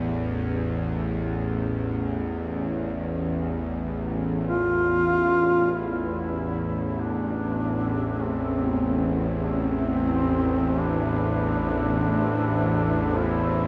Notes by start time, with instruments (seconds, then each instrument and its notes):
Already playing: synth drone A1 E2
4.48 duduk F4
5.73 synth drone A1 E2, analog synth pad A3, duduk E4
6.02 analog synth pad E5
7.01 duduk D4
8.02 analog synth pad C5
8.22 duduk C4
9.07 analog synth pad B4
9.42 duduk D4
9.51 duduk C4
10.79 duduk D4
13.17 duduk F4
13.24 duduk E4